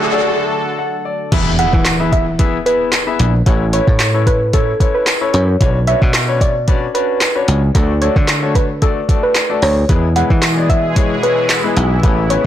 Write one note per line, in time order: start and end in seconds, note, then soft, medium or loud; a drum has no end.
0.00 1.30 D3 medium
0.00 1.28 F#3 medium
0.00 1.30 A3 medium
0.00 1.30 F#4 medium
0.00 1.30 A4 medium
0.00 riser medium
0.12 0.76 D4 medium
0.12 0.76 F#4 medium
0.12 0.76 A4 medium
0.12 0.76 D5 loud
0.52 0.77 A5 medium
0.79 1.03 F#5 medium
1.05 1.30 D5 medium
1.32 1.65 E2 loud
1.32 1.49 B3 medium
1.32 1.49 E4 medium
1.32 1.49 G#4 medium
1.32 1.49 B4 medium
1.32 1.49 E5 loud
1.32 kick loud
1.32 closed hi-hat loud
1.32 crash loud
1.32 impact medium
1.59 1.83 B3 medium
1.59 1.83 E4 medium
1.59 1.83 G#4 medium
1.59 1.83 B4 medium
1.59 1.83 E5 medium
1.59 1.69 F#5 medium
1.59 closed hi-hat medium
1.73 2.59 E3 loud
1.73 kick loud
1.85 snare loud
1.85 clap loud
1.85 closed hi-hat loud
1.85 tambourine medium
2.00 2.24 B3 medium
2.00 2.24 E4 medium
2.00 2.24 G#4 medium
2.00 2.24 B4 medium
2.00 2.24 E5 medium
2.12 2.22 E5 medium
2.12 kick medium
2.12 closed hi-hat medium
2.39 2.56 B3 loud
2.39 2.56 E4 medium
2.39 2.56 G#4 medium
2.39 2.56 B4 medium
2.39 2.56 E5 loud
2.39 kick medium
2.39 closed hi-hat medium
2.66 2.90 B3 medium
2.66 2.90 E4 medium
2.66 2.90 G#4 medium
2.66 3.05 B4 medium
2.66 2.90 B4 medium
2.66 2.91 E5 medium
2.66 closed hi-hat medium
2.92 snare medium
2.92 clap loud
2.92 closed hi-hat loud
2.92 tambourine loud
3.07 3.31 B3 medium
3.07 3.31 E4 medium
3.07 3.31 G#4 medium
3.07 3.31 B4 medium
3.07 3.31 E5 medium
3.19 3.41 A#1 loud
3.19 closed hi-hat medium
3.46 3.79 A1 loud
3.46 3.63 C#4 medium
3.46 3.63 E4 medium
3.46 3.63 A4 medium
3.46 3.63 B4 medium
3.46 3.63 C#5 loud
3.46 kick loud
3.46 closed hi-hat loud
3.73 3.97 C#4 medium
3.73 3.98 E4 medium
3.73 3.98 A4 medium
3.73 3.98 B4 medium
3.73 3.83 C#5 medium
3.73 3.98 C#5 medium
3.73 closed hi-hat medium
3.88 4.73 A2 loud
3.88 kick loud
3.99 snare medium
3.99 clap loud
3.99 closed hi-hat loud
3.99 tambourine medium
4.14 4.38 C#4 medium
4.14 4.38 E4 medium
4.14 4.38 A4 medium
4.14 4.38 B4 medium
4.14 4.38 C#5 medium
4.27 4.37 B4 medium
4.27 kick medium
4.27 closed hi-hat medium
4.53 4.70 C#4 medium
4.53 4.70 E4 medium
4.53 4.70 A4 medium
4.53 4.63 A4 medium
4.53 4.70 B4 medium
4.53 4.70 C#5 medium
4.53 kick loud
4.53 closed hi-hat medium
4.80 5.05 C#4 medium
4.80 5.05 E4 medium
4.80 5.05 A4 medium
4.80 5.05 B4 medium
4.80 5.05 C#5 medium
4.80 kick loud
4.80 closed hi-hat medium
4.95 5.03 B4 medium
5.06 snare medium
5.06 clap loud
5.06 closed hi-hat loud
5.06 tambourine loud
5.21 5.45 C#4 medium
5.21 5.45 E4 medium
5.21 5.45 A4 medium
5.21 5.45 B4 medium
5.21 5.45 C#5 medium
5.34 5.55 F#2 loud
5.34 5.44 C#5 medium
5.34 closed hi-hat medium
5.60 5.93 B1 loud
5.60 5.77 C#4 medium
5.60 5.77 D4 medium
5.60 5.77 F#4 medium
5.60 5.78 B4 medium
5.60 5.78 C#5 loud
5.60 kick loud
5.60 closed hi-hat loud
5.87 6.12 C#4 medium
5.87 6.12 D4 medium
5.87 6.12 F#4 medium
5.87 6.12 B4 medium
5.87 6.12 C#5 medium
5.87 5.97 E5 medium
5.87 closed hi-hat medium
6.02 6.87 B2 loud
6.02 kick loud
6.13 snare medium
6.13 clap loud
6.13 closed hi-hat loud
6.13 tambourine medium
6.28 6.52 C#4 medium
6.28 6.52 D4 medium
6.28 6.53 F#4 medium
6.28 6.53 B4 medium
6.28 6.53 C#5 medium
6.41 6.51 D5 medium
6.41 kick medium
6.41 closed hi-hat medium
6.68 6.84 C#4 loud
6.68 6.85 D4 medium
6.68 6.85 F#4 medium
6.68 6.85 B4 medium
6.68 6.85 D5 loud
6.68 kick loud
6.68 closed hi-hat medium
6.94 7.19 C#4 medium
6.94 7.19 D4 medium
6.94 7.19 F#4 medium
6.94 7.19 B4 medium
6.94 7.33 B4 medium
6.94 7.19 D5 medium
6.94 closed hi-hat medium
7.21 snare medium
7.21 clap loud
7.21 closed hi-hat loud
7.21 tambourine loud
7.35 7.60 C#4 medium
7.35 7.60 D4 medium
7.35 7.60 F#4 medium
7.35 7.60 B4 medium
7.35 7.60 C#5 medium
7.48 7.70 C#2 loud
7.48 closed hi-hat medium
7.75 8.08 D2 loud
7.75 7.92 A3 medium
7.75 7.92 D4 medium
7.75 7.92 F#4 medium
7.75 7.92 A4 medium
7.75 7.92 D5 loud
7.75 kick loud
7.75 closed hi-hat loud
8.01 8.26 A3 medium
8.01 8.26 D4 medium
8.01 8.26 F#4 medium
8.01 8.26 A4 medium
8.01 8.12 C#5 medium
8.01 8.26 D5 medium
8.01 closed hi-hat medium
8.16 9.01 D3 loud
8.16 kick loud
8.28 snare medium
8.28 clap loud
8.28 closed hi-hat loud
8.28 tambourine medium
8.42 8.67 A3 medium
8.42 8.67 D4 medium
8.42 8.67 F#4 medium
8.42 8.67 A4 medium
8.42 8.67 C#5 medium
8.55 8.65 B4 medium
8.55 kick medium
8.55 closed hi-hat medium
8.82 8.99 A3 medium
8.82 8.99 D4 medium
8.82 8.99 F#4 medium
8.82 8.92 A4 loud
8.82 8.99 A4 medium
8.82 8.99 D5 medium
8.82 kick medium
8.82 closed hi-hat medium
9.09 9.33 A3 medium
9.09 9.33 D4 medium
9.09 9.33 F#4 medium
9.09 9.33 A4 medium
9.09 9.33 D5 medium
9.09 kick loud
9.09 closed hi-hat medium
9.23 9.32 B4 medium
9.35 snare medium
9.35 clap loud
9.35 closed hi-hat loud
9.35 tambourine loud
9.50 9.74 A3 medium
9.50 9.74 D4 medium
9.50 9.74 F#4 medium
9.50 9.74 A4 medium
9.50 9.74 D5 medium
9.62 9.84 D2 loud
9.62 9.72 C#5 medium
9.62 open hi-hat medium
9.89 10.22 E2 loud
9.89 12.01 B2 medium
9.89 12.46 E3 medium
9.89 10.06 G#3 medium
9.89 12.01 G#3 medium
9.89 10.06 B3 medium
9.89 10.06 E4 medium
9.89 12.46 E4 medium
9.89 12.01 G#4 medium
9.89 10.06 G#4 medium
9.89 10.06 B4 loud
9.89 kick loud
9.89 closed hi-hat loud
10.16 10.40 G#3 medium
10.16 10.40 B3 medium
10.16 10.40 E4 medium
10.16 10.40 G#4 medium
10.16 10.41 B4 medium
10.16 10.26 F#5 medium
10.16 closed hi-hat medium
10.30 11.16 E3 loud
10.30 kick loud
10.42 snare loud
10.42 clap loud
10.42 closed hi-hat loud
10.42 tambourine medium
10.57 10.81 G#3 medium
10.57 10.81 B3 medium
10.57 10.81 E4 medium
10.57 10.81 G#4 medium
10.57 10.81 D5 medium
10.69 10.79 E5 medium
10.69 kick medium
10.69 closed hi-hat medium
10.96 11.13 G#3 loud
10.96 11.13 B3 medium
10.96 11.13 E4 medium
10.96 11.13 G#4 medium
10.96 11.13 C#5 loud
10.96 kick loud
10.96 closed hi-hat loud
11.23 11.47 G#3 medium
11.23 11.47 B3 medium
11.23 11.48 E4 medium
11.23 11.48 G#4 medium
11.23 11.62 B4 medium
11.23 11.48 C#5 medium
11.23 closed hi-hat medium
11.49 snare medium
11.49 clap loud
11.49 closed hi-hat loud
11.49 tambourine loud
11.64 11.88 G#3 medium
11.64 11.88 B3 medium
11.64 11.88 E4 medium
11.64 11.88 G#4 medium
11.64 11.88 B4 medium
11.77 11.98 B1 loud
11.77 closed hi-hat medium
12.03 12.36 A1 loud
12.03 12.46 C#3 medium
12.03 12.46 A3 medium
12.03 12.20 B3 medium
12.03 12.46 B3 medium
12.03 12.20 C#4 medium
12.03 12.20 E4 medium
12.03 12.20 A4 medium
12.03 12.20 B4 loud
12.03 kick loud
12.03 closed hi-hat loud
12.30 12.46 B3 medium
12.30 12.46 C#4 medium
12.30 12.46 E4 medium
12.30 12.46 A4 medium
12.30 12.46 B4 medium
12.30 12.40 C#5 medium
12.30 closed hi-hat medium